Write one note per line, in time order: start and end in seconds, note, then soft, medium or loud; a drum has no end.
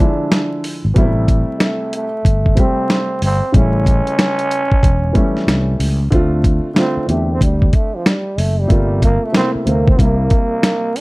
0.00 0.81 D3 medium
0.00 0.82 F3 medium
0.00 0.82 G#3 medium
0.00 0.65 D4 loud
0.00 0.83 E4 medium
0.32 snare loud
0.32 closed hi-hat medium
0.64 open hi-hat medium
0.85 0.95 G#1 medium
0.94 1.42 A1 loud
0.94 1.03 B2 medium
0.94 2.03 G3 medium
0.94 2.04 A3 medium
0.94 kick loud
0.94 closed hi-hat medium
0.98 2.05 C3 medium
0.98 2.04 E4 loud
1.28 kick loud
1.28 closed hi-hat medium
1.58 1.65 G#3 medium
1.58 snare loud
1.58 closed hi-hat medium
1.64 1.94 A3 medium
1.93 2.61 A3 medium
1.93 closed hi-hat medium
2.25 2.53 G1 medium
2.25 kick medium
2.25 closed hi-hat loud
2.46 kick medium
2.55 3.39 C3 medium
2.55 3.39 G3 medium
2.55 3.40 A3 medium
2.55 kick loud
2.55 closed hi-hat medium
2.59 3.23 C4 loud
2.59 3.41 G4 medium
2.90 snare loud
2.90 closed hi-hat medium
3.22 3.40 G1 medium
3.22 3.57 C4 loud
3.22 open hi-hat medium
3.52 4.01 A1 loud
3.52 4.60 C#3 medium
3.52 4.61 G3 medium
3.52 4.62 A3 medium
3.52 5.81 C#4 loud
3.52 4.62 E4 medium
3.52 kick loud
3.52 closed hi-hat medium
3.86 kick loud
3.86 closed hi-hat medium
4.07 closed hi-hat soft
4.19 snare loud
4.19 closed hi-hat medium
4.39 closed hi-hat medium
4.51 closed hi-hat medium
4.72 kick medium
4.83 5.11 E1 loud
4.83 kick medium
4.83 closed hi-hat medium
5.13 5.97 E3 medium
5.13 5.98 G3 medium
5.13 5.98 A3 medium
5.13 5.99 C#4 medium
5.13 kick medium
5.13 closed hi-hat medium
5.37 snare soft
5.47 5.76 C2 medium
5.47 snare loud
5.47 closed hi-hat medium
5.80 6.08 C#2 medium
5.80 open hi-hat medium
6.11 6.58 D2 loud
6.11 6.67 D3 medium
6.11 6.68 A3 medium
6.11 6.68 C4 medium
6.11 6.69 F4 loud
6.11 kick loud
6.11 closed hi-hat medium
6.44 kick loud
6.44 closed hi-hat medium
6.74 7.03 D3 medium
6.74 7.04 A3 medium
6.74 7.05 C4 medium
6.74 7.05 F4 medium
6.74 snare loud
6.74 closed hi-hat medium
6.79 7.08 C4 medium
6.97 muted fretless electric bass stroke soft
7.06 7.37 E2 medium
7.06 8.14 D3 medium
7.06 8.15 A3 medium
7.06 8.16 C4 medium
7.06 closed hi-hat medium
7.10 7.34 A3 medium
7.10 8.16 G4 medium
7.32 7.42 C4 medium
7.41 7.69 D2 medium
7.41 7.77 G3 medium
7.41 kick medium
7.41 closed hi-hat medium
7.62 kick medium
7.73 7.97 A3 medium
7.73 kick medium
7.73 closed hi-hat medium
7.96 8.09 F3 medium
8.06 8.41 G3 medium
8.06 snare loud
8.06 closed hi-hat medium
8.38 8.66 F#1 medium
8.38 8.61 A3 medium
8.38 open hi-hat medium
8.60 9.03 G3 loud
8.68 9.17 G1 loud
8.68 9.25 C3 medium
8.68 9.25 A3 medium
8.68 9.26 A#3 medium
8.68 9.27 F4 medium
8.68 kick loud
8.68 closed hi-hat medium
9.02 9.26 A#3 medium
9.02 kick loud
9.02 closed hi-hat medium
9.25 9.35 A3 medium
9.32 9.61 C3 medium
9.32 9.62 A3 medium
9.32 9.63 A#3 medium
9.32 9.63 E4 medium
9.32 snare loud
9.32 closed hi-hat medium
9.36 9.51 C4 medium
9.55 muted fretless electric bass stroke soft
9.64 9.95 D2 medium
9.64 9.95 C3 medium
9.64 9.99 A3 medium
9.64 9.98 A#3 medium
9.64 9.90 A#3 medium
9.64 10.00 C4 medium
9.64 closed hi-hat medium
9.88 10.01 C4 loud
9.88 kick medium
9.97 10.27 C2 loud
9.97 11.01 C3 medium
9.97 11.01 G3 medium
9.97 11.01 A#3 medium
9.97 10.99 A#3 loud
9.97 kick loud
9.97 closed hi-hat medium
10.01 11.01 E4 medium
10.30 kick loud
10.30 closed hi-hat medium
10.63 snare loud
10.63 closed hi-hat medium
10.96 open hi-hat medium